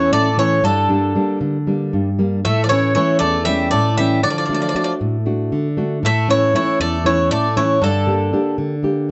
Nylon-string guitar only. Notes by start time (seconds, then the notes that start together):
Already playing: E2 E3 A3 C#4
0.12 A2
0.37 E3 A3 C#4
0.63 G2
0.89 G3 A#3 D4
1.15 G3 A#3 D4
1.41 D3
1.67 G3 A#3 D4
1.93 G2
2.19 G3 A#3 D4
2.45 A2
2.71 E3 A3 C#4
2.95 E3 A3 C#4
3.21 E2
3.47 E3 A3 C#4
3.73 A2
3.99 E3 A3 C#4
4.24 D3
4.49 A3 D4 F#4
4.75 A3 D4 F#4
5.01 A2
5.26 A3 D4 F#4
5.52 D3
5.77 A3 D4 F#4
6.03 A2
6.28 A3 C#4 E4
6.54 A3 C#4 E4
6.80 E2
7.04 A3 C#4 E4
7.31 A2
7.56 A3 C#4 E4
7.82 G2
8.07 A#3 D4 G4
8.33 A#3 D4 G4
8.58 D3
8.83 A#3 D4 G4